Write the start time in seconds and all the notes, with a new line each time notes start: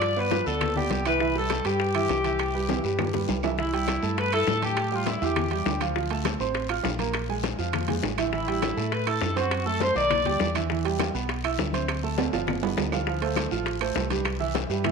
Already playing: G2 F3 F4 D5 F5
0.01 high bongo, high conga, high timbale, long guiro, claves
0.16 B3 B4 D5, high bongo, high conga
0.31 F3 F4 F5, high bongo, high conga, high timbale, low timbale, short guiro
0.46 D2 B3 A4 B4 D5, high bongo, short guiro
0.61 high bongo, high conga, low conga, high timbale, long guiro, claves
0.76 B3 G4 B4 D5, high bongo, high conga, low conga
0.90 C2, high bongo, low bongo, high conga, high timbale, low timbale, short guiro
1.05 E3 E4 B4 E5, high conga, high timbale, short guiro, claves
1.20 E3 E4 E5, high bongo, high conga, long guiro
1.35 G3 G4 A4 B4, high bongo, high conga
1.50 high bongo, high conga, high timbale, low timbale, short guiro, claves
1.65 G2 G3 G4 B4, high bongo, high conga, high timbale, short guiro
1.80 high bongo, high conga, long guiro
1.95 E3 E4 E5, high bongo, high timbale, claves
2.09 C2, high bongo, low bongo, high conga, high timbale, low timbale, short guiro
2.24 E3 E4 E5, high timbale, short guiro
2.39 high bongo, high conga, high timbale, long guiro, claves
2.54 G3 G4 B4, high bongo, high conga
2.69 E3 E4 E5, high bongo, high conga, high timbale, short guiro
2.84 G2 G3 G4 B4, high bongo, short guiro
2.99 high bongo, high conga, low conga, low timbale, long guiro, claves
3.13 G3 G4 B4, high bongo, high conga, low conga
3.28 C2, low bongo, high conga, low timbale, short guiro
3.43 E3 E4 E5, low bongo, high conga, low timbale, short guiro, claves
3.58 E3 E4 E5, high bongo, high conga, long guiro
3.73 G3 G4 G5, high conga, high timbale
3.88 high bongo, high conga, high timbale, low timbale, short guiro, claves
4.02 G2 A3 A4 A5, high conga, short guiro
4.18 B4, high bongo, high conga, high timbale, long guiro
4.32 E4 A4 E5 E6, high conga, high timbale, claves
4.47 A2, high bongo, low bongo, high conga, low timbale, short guiro
4.62 A3 G4 A4 A5, high conga, high timbale, short guiro
4.77 high bongo, high conga, high timbale, long guiro, claves
4.92 G3 F4 G4 G5, high bongo, high conga
5.06 E4, high bongo, high conga, high timbale, low timbale, short guiro
5.21 E2 E3 E4 G4 E5, high conga, short guiro
5.36 high bongo, high conga, low conga, high timbale, long guiro, claves
5.51 G3 G4 G5, high bongo, high conga, high timbale
5.66 D2, high bongo, low bongo, high conga, low timbale, short guiro
5.81 F3 F4 F5, high bongo, high conga, high timbale, short guiro, claves
5.96 F3 F4 F5, high bongo, high conga, long guiro
6.10 A3 A4 A5, high conga, high timbale
6.25 high bongo, high conga, high timbale, low timbale, short guiro, claves
6.40 A1 C4 C5 C6, high conga, short guiro
6.55 high bongo, high conga, high timbale, long guiro
6.69 F4 F5 F6, high conga, high timbale, claves
6.84 A#1, high bongo, low bongo, high conga, low timbale, short guiro
6.99 A#3 A#4 A#5, high conga, high timbale, short guiro
7.14 high bongo, high conga, high timbale, long guiro, claves
7.29 G#3 G#4 G#5, high bongo, high conga
7.43 high bongo, high conga, high timbale, low timbale, short guiro
7.59 F2 F3 F4 F5, high conga, short guiro
7.73 high bongo, high conga, low conga, high timbale, long guiro, claves
7.88 G#3 G#4 G#5, high bongo, high conga, low conga, high timbale
8.03 A1, high bongo, low bongo, high conga, low timbale, short guiro
8.18 E3 E4 E5, high bongo, high conga, high timbale, short guiro, claves
8.33 E3 E4 E5, high bongo, high conga, long guiro
8.47 G3 G4 G5, high conga, high timbale
8.62 high bongo, high conga, high timbale, low timbale, short guiro, claves
8.77 A2 A3 A4 A5, high conga, short guiro
8.92 B4, high bongo, high conga, high timbale, long guiro
9.07 E4 A4 E5 E6, high conga, high timbale, claves
9.21 F#2, high bongo, low bongo, high conga, low timbale, short guiro
9.36 C4 F#4 C5 C6, high conga, high timbale, short guiro
9.51 high bongo, high conga, high timbale, long guiro, claves
9.66 A3 A4 A5, high bongo, high conga
9.80 C5, high bongo, high conga, high timbale, low timbale, short guiro
9.95 B1 D#3 D#4 D5 D#5, high conga, short guiro
10.10 high bongo, high conga, low conga, high timbale, long guiro, claves
10.25 D2 G3 G4 G5, high bongo, high conga, low conga, high timbale
10.40 E2, high bongo, low bongo, high conga, low timbale, short guiro
10.55 E3 E4 E5, high bongo, high conga, high timbale, short guiro, claves
10.70 E3 E4 E5, high bongo, high conga, long guiro
10.85 G3 G4 G5, high conga, high timbale
10.99 high bongo, high conga, high timbale, low timbale, short guiro, claves
11.14 B1 B3 B4 B5, high conga, short guiro
11.29 high bongo, high conga, high timbale, long guiro
11.44 E4 E5 E6, high conga, high timbale, claves
11.58 D2, high bongo, low bongo, high conga, low timbale, short guiro
11.73 C4 C5 C6, high conga, high timbale, short guiro
11.88 high bongo, high conga, high timbale, long guiro, claves
12.03 A3 A4 A5, high bongo, high conga
12.18 high bongo, high conga, high timbale, short guiro
12.32 G1 F3 F4 F5, high conga, high timbale, short guiro
12.47 high bongo, high conga, low conga, high timbale, long guiro, claves
12.62 B3 B4 B5, high bongo, high conga, low timbale
12.77 D2, high bongo, low bongo, high conga, low timbale, short guiro
12.92 F3 F4 F5, high bongo, low timbale, short guiro, claves
13.07 F3 F4 F5, high bongo, high conga, long guiro
13.22 A3 A4 C5, high timbale
13.36 high bongo, high conga, high timbale, low timbale, short guiro, claves
13.51 A1 F3 F4 F5, high conga, short guiro
13.66 high bongo, high conga, high timbale, long guiro
13.80 A3 A4 C5, high conga, high timbale, claves
13.95 C2, high bongo, low bongo, high conga, low timbale, short guiro
14.10 G3 G4 B4, high conga, high timbale, short guiro
14.25 high bongo, high conga, high timbale, long guiro, claves
14.40 E3 E4 E5, high bongo, high conga
14.55 high bongo, high conga, high timbale, low timbale, short guiro
14.69 G2 G3 G4 B4, high conga, short guiro
14.84 E3 E4 E5, high bongo, high conga, low conga, high timbale, long guiro, claves